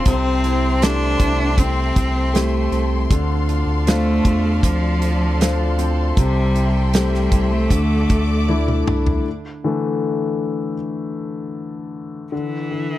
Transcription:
Already playing: steel-string acoustic guitar C4 F4 A4, string section A4 C6
0.05 sub bass C2, steel-string acoustic guitar C3, grand piano C3, cello C4, string section E5 G5, kick, closed hi-hat
0.44 steel-string acoustic guitar E4, closed hi-hat
0.82 grand piano A3 C4 G4, steel-string acoustic guitar C4, cello D4, snare, closed hi-hat
1.19 sub bass C2, steel-string acoustic guitar E4, kick, closed hi-hat
1.57 steel-string acoustic guitar C4, cello C4, kick, closed hi-hat
1.96 sub bass C2, steel-string acoustic guitar A4, kick, closed hi-hat
2.33 grand piano A3 C4 G4, cello A3, steel-string acoustic guitar E4, snare, closed hi-hat
2.72 sub bass C2, steel-string acoustic guitar C4, closed hi-hat
3.09 sub bass D2, steel-string acoustic guitar D3, grand piano D3, string section A4 D5 F5, kick, closed hi-hat
3.49 steel-string acoustic guitar F4, closed hi-hat
3.67 sub bass D2
3.87 cello A3, grand piano C4 D4 F4, steel-string acoustic guitar C4, snare, closed hi-hat
4.25 sub bass E2, steel-string acoustic guitar F4, kick, closed hi-hat
4.63 sub bass D2, cello F3, steel-string acoustic guitar C4, kick, closed hi-hat
5.02 steel-string acoustic guitar A4, closed hi-hat
5.40 grand piano C4 D4 F4, steel-string acoustic guitar F4, snare, closed hi-hat
5.78 steel-string acoustic guitar C4, closed hi-hat
6.17 sub bass C2, steel-string acoustic guitar C3, grand piano C3, cello G3, string section E5 G5, kick, closed hi-hat
6.55 steel-string acoustic guitar E4, closed hi-hat
6.93 cello G3, grand piano A3 C4 G4, steel-string acoustic guitar C4, snare, closed hi-hat
7.14 snare
7.32 sub bass C2, steel-string acoustic guitar E4, kick, closed hi-hat
7.52 cello A3
7.70 sub bass D2, steel-string acoustic guitar D3, grand piano D3, string section D5 D6, kick, closed hi-hat
8.09 sub bass D2, steel-string acoustic guitar A4, kick, closed hi-hat
8.49 grand piano A3 D4 E4, steel-string acoustic guitar E4, high tom
8.68 mid tom
8.88 sub bass C2, steel-string acoustic guitar D4, mid tom
9.07 floor tom
9.64 grand piano D3 E3 A3
12.32 grand piano D3, cello E3
12.71 grand piano D3

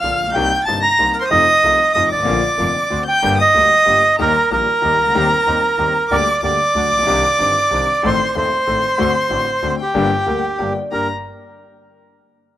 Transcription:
0.00 double bass A#1, grand piano A#1 A#2 D3 F3, bandoneon A#3 D4 F4 F5, violin F6
0.04 grand piano A#3 F4
0.19 double bass A#1
0.23 grand piano A1
0.27 grand piano A#1
0.31 grand piano B1, double bass C2, bandoneon C4 G5, violin G6
0.35 grand piano C2 C3 G3 A#3 D#4, bandoneon A#3 D#4
0.65 double bass G1, grand piano G1 G2 C3 G3 A#3 D#4, bandoneon A#3 C4 D#4 A5, violin A6
0.81 bandoneon A#5, violin A#6
0.98 grand piano C2 C3 G3 A#3 D#4, double bass C2, bandoneon A#3 C4 D#4
1.13 bandoneon A#4, violin A#5
1.21 bandoneon C5, violin C6
1.28 grand piano F2 C3 F3 A3 D#4, double bass F2, bandoneon A3 D#4 F4 D#5, violin D#6
1.63 double bass C2, grand piano C2 C3 F3 A3 D#4, bandoneon A3 D#4 F4
1.93 double bass F2, grand piano F2 C3 F3 A3 D#4, bandoneon A3 D#4 F4 D#5, violin D#6
2.09 double bass G#1, bandoneon D5, violin D6
2.14 grand piano G1 G#1
2.23 grand piano A1 A#1 A#2 D3 F3 A#3 F4
2.27 double bass A#1, bandoneon A#3 D4 F4
2.57 grand piano F1 F2 D3 F3 A#3 F4, double bass F1, bandoneon A#3 D4 F4
2.90 grand piano D2 D3 A3 C4 F#4, double bass D2, bandoneon C4 D4 F#4
3.06 bandoneon G5, violin G6
3.23 grand piano G1 G2 D3 G3 A#3 G4, double bass G1, bandoneon A#3 D4 G4
3.38 bandoneon D#5, violin D#6
3.54 grand piano D2 D3 G3 A#3 G4, double bass D2, bandoneon A#3 D4 G4
3.86 grand piano G1 G2 D3 G3 A#3 G4, double bass G1, bandoneon A#3 D4 G4
4.19 grand piano D#2 D#3 G3 A#3 G4, double bass D#2, bandoneon A#3 D#4 G4 A#4, violin A#5
4.51 grand piano A#1 A#2 D#3 G3 A#3 G4, double bass A#1, bandoneon A#3 D#4 G4 A#4, violin A#5
4.82 grand piano D#2 D#3 G3 A#3 G4, double bass D#2, bandoneon A#3 D#4 G4
4.99 grand piano C2, double bass C#2
5.07 grand piano C#2
5.11 grand piano D2 D#2 D#3 G3, double bass D#2, bandoneon C4 G4
5.15 grand piano C4 G4, bandoneon D#4
5.46 grand piano D#2 D#3 G3 C4 G4, double bass D#2, bandoneon C4 D#4 G4
5.78 grand piano D#2 D#3 G3 C4 G4, double bass D#2, bandoneon C4 D#4 G4
6.10 double bass D2, grand piano D2 D3 G3 A#3 G4, bandoneon A#3 D4 G4 D5, violin D6
6.42 grand piano D2 D3 G3 A#3 G4, double bass D2, bandoneon A#3 D4 G4 D5, violin D6
6.75 grand piano D2 D3 F#3 A3 F#4, double bass D2, bandoneon A3 D4 F#4
6.92 grand piano A1, double bass A#1
6.98 grand piano A#1
7.03 grand piano B1 C2 C3
7.07 double bass C2, grand piano D#3 C4 D4 G4, bandoneon C4 D4 D#4
7.38 grand piano G1 G2 D#3 C4 D4 G4, double bass G1, bandoneon C4 D4 D#4
7.70 grand piano C2 C3 D#3 C4 D4 G4, double bass C2, bandoneon C4 D4 D#4
8.03 grand piano A1 A2 D#3 A3 C4 A4, double bass A1, bandoneon A3 C4 D#4 C5, violin C6
8.35 grand piano D#1 D#2 D#3 A3 C4 A4, double bass D#2, bandoneon A3 C4 D#4 C5, violin C6
8.66 grand piano A1 A2 D#3 A3 C4 A4, double bass A1, bandoneon A3 C4 D#4
8.98 grand piano D2 D3 A3 C4 F#4, double bass D2, bandoneon F#3 C4 D4
9.29 grand piano A1 A2 D3 A3 C4 F#4, double bass A1, bandoneon F#3 C4 D4
9.62 grand piano D2 D3 A3 C4 F#4, double bass D2, bandoneon F#3 C4 D4
9.80 bandoneon G4, violin G5
9.94 grand piano G1 G2 D3 G3 A#3 G4, double bass G1, bandoneon G3 A#3 D4
10.26 grand piano D2 D3 G3 A#3 G4, double bass D2, bandoneon G3 A#3 D4, vibraphone A#4
10.58 grand piano G1 G2 D3 G3 A#3 G4, double bass G1, bandoneon G3 A#3 D4, vibraphone D5
10.91 double bass G1, grand piano G2 A#3 D4 G4, bandoneon G3 A#3 D4 A#4, vibraphone D5, violin A#5

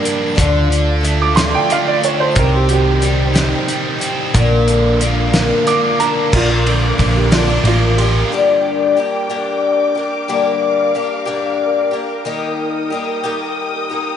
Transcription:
Already playing: overdriven electric guitar G3 A#3, string section D4 A#4 G5
0.03 twelve-string acoustic guitar G3 A#3 D4 A#4, closed hi-hat
0.35 picked electric bass D2, twelve-string acoustic guitar D3 F3 D4 F4 A4, string section A4 F5, kick
0.39 closed hi-hat
0.70 overdriven electric guitar D3, closed hi-hat
1.01 twelve-string acoustic guitar F3 D4 F4 A4, overdriven electric guitar A3, closed hi-hat
1.22 upright piano D6
1.35 twelve-string acoustic guitar D3 F3 D4 F4 A4, upright piano C6, snare, closed hi-hat
1.54 upright piano G5
1.70 overdriven electric guitar A3, upright piano F5, closed hi-hat
1.87 upright piano D5
2.01 twelve-string acoustic guitar D4 F4 A4, upright piano C#5, closed hi-hat
2.20 upright piano C5
2.34 picked electric bass C2, twelve-string acoustic guitar C3 G3 C4 D#4 G4, string section D#4 C5 G5, kick, closed hi-hat
2.38 upright piano A#4
2.56 upright piano G4
2.68 overdriven electric guitar D#3, upright piano F#4, closed hi-hat
2.72 upright piano G4
3.00 twelve-string acoustic guitar G3 C4 D#4 G4, closed hi-hat
3.34 twelve-string acoustic guitar C3 G3 C4 D#4 G4, overdriven electric guitar D#3, snare, closed hi-hat
3.68 overdriven electric guitar G3, closed hi-hat
3.99 twelve-string acoustic guitar C4 D#4 G4, closed hi-hat
4.33 picked electric bass A#1, twelve-string acoustic guitar A#2 D3 F3 A#3 D4 A#4, string section D4 A#4 F5, kick, closed hi-hat
4.68 overdriven electric guitar D3, closed hi-hat
5.00 twelve-string acoustic guitar F3 A#3 D4 A#4, closed hi-hat
5.33 twelve-string acoustic guitar A#2 D3 F3 A#3 D4 A#4, snare, closed hi-hat
5.67 overdriven electric guitar A#3, upright piano D6, closed hi-hat
6.00 twelve-string acoustic guitar F3 A#3 D4 A#4, upright piano A#5, closed hi-hat
6.31 picked electric bass A#1, twelve-string acoustic guitar A#2 D3 F3 A#3 D4 A#4, string section A#4 F5 D6, kick, crash
6.36 upright piano F4
6.49 twelve-string acoustic guitar F3 A#3 D4 A#4
6.66 overdriven electric guitar D3, twelve-string acoustic guitar F3 A#3 D4 A#4, ride
6.98 picked electric bass A#1, overdriven electric guitar D3, twelve-string acoustic guitar F3 A#3 D4 A#4, kick, ride
7.17 upright piano G4
7.31 twelve-string acoustic guitar A#2 D3 F3 A#3 D4 A#4, upright piano F4, snare, ride
7.47 twelve-string acoustic guitar F3 A#3 D4 A#4
7.64 picked electric bass A1, twelve-string acoustic guitar F3 A#3 D4 A#4, upright piano F4, ride
7.97 twelve-string acoustic guitar F3 A#3 D4, overdriven electric guitar F4, upright piano G4, ride
8.02 twelve-string acoustic guitar A#4
8.28 twelve-string acoustic guitar G2, string section A#4 G5 D6
8.33 twelve-string acoustic guitar D3 G3 A#3 D4 G4
8.97 twelve-string acoustic guitar G3 A#3 D4 G4
9.29 twelve-string acoustic guitar G2 D3 G3 A#3 D4 G4
9.95 twelve-string acoustic guitar A#3 D4 G4
9.99 twelve-string acoustic guitar G3
10.28 twelve-string acoustic guitar G2 D3 G3 A#3 D4 G4, string section F5
10.95 twelve-string acoustic guitar G3 A#3 D4 G4
11.26 twelve-string acoustic guitar G2 D3 G3 A#3 D4 G4
11.91 twelve-string acoustic guitar G3 A#3 D4 G4
12.24 twelve-string acoustic guitar D#3 G3 A#3 D#4 G4, string section G5 D#6
12.90 twelve-string acoustic guitar G3 A#3 D#4 G4
13.24 twelve-string acoustic guitar D#3 G3 A#3 D#4 G4
13.90 twelve-string acoustic guitar A#3 D#4 G4

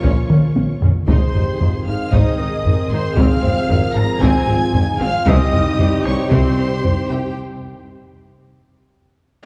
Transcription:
Already playing: trombone section F3 A#3, french horn section F4, viola section F4, trumpet section C#5, violin section C#5 C#6
0.03 tuba A#1, double bass section A#1, cello section A#2, viola section C#4, taiko
0.29 double bass section A#1, tuba A#1, cello section A#2, viola section C#4, taiko mid
0.56 double bass section A#1, tuba A#1, cello section A#2, viola section C#4, taiko high
0.81 double bass section A#1, tuba A#1, cello section A#2, viola section C#4, taiko low
1.07 double bass section G#1, tuba G#1, cello section G#2, trombone section D#3 C4, viola section D#4 G#4, french horn section G#4, violin section C5 C6, trumpet section C5, taiko
1.34 double bass section G#1, tuba G#1, cello section G#2, viola section D#4, french horn section G4, taiko low
1.60 tuba G#1, double bass section G#1, cello section G#2, viola section D#4, french horn section F4, taiko low
1.85 tuba G#1, double bass section G#1, cello section G#2, french horn section D#4, viola section D#4, violin section F5 F6, trumpet section F5
2.11 double bass section G#1, tuba G#1, cello section G#2, viola section D#4, french horn section C5, violin section D#5 D#6, trumpet section D#5, taiko
2.38 double bass section G#1, tuba G#1, cello section G#2, viola section D#4, french horn section A#4
2.64 double bass section G#1, tuba G#1, cello section G#2, viola section D#4, taiko low
2.90 double bass section G#1, tuba G#1, cello section G#2, viola section D#4, violin section C5 C6, trumpet section C5
3.15 double bass section G#1, tuba G#1, cello section G#2, trombone section F3, viola section C4, french horn section G#4, violin section F5 F6, trumpet section F5, taiko
3.42 double bass section G#1, tuba G#1, cello section G#2, viola section C4, french horn section C5, taiko low
3.69 double bass section G#1, tuba G#1, cello section G#2, viola section C4, french horn section A#4, taiko low
3.93 double bass section G#1, tuba G#1, cello section G#2, viola section C4, violin section A#5 A#6, trumpet section A#5
4.20 double bass section G#1, tuba G#1, cello section G#2, viola section C4, french horn section G#4, violin section G#5 G#6, trumpet section G#5, taiko
4.48 double bass section G#1, tuba G#1, cello section G#2, viola section C4, french horn section F4
4.72 double bass section G#1, tuba G#1, cello section G#2, viola section C4, french horn section D#4, taiko low
4.99 double bass section G#1, tuba G#1, cello section G#2, viola section C4, french horn section F4, violin section F5 F6, trumpet section F5
5.26 double bass section C2, tuba C2, cello section C3, trombone section G3 C4, viola section C4 G4, violin section D#5 D#6, trumpet section D#5, taiko
5.30 french horn section G4
5.52 double bass section C2, tuba C2, cello section C3, viola section C4, french horn section D#4, taiko low
5.78 tuba C2, double bass section C2, cello section C3, viola section C4, taiko low
6.04 double bass section C2, tuba C2, cello section C3, viola section C4, violin section C#5 C#6, trumpet section C#5, taiko rim
6.31 double bass section C2, tuba C2, cello section C3, viola section C4, french horn section F4, trumpet section C5, violin section C5 C6, taiko
6.58 double bass section C2, tuba C2, cello section C3, viola section C4, french horn section G4
6.83 tuba C2, double bass section C2, cello section C3, viola section C4, french horn section D#4, taiko low
7.09 double bass section C2, tuba C2, cello section C3, viola section C4, violin section G4 G5, trumpet section G4

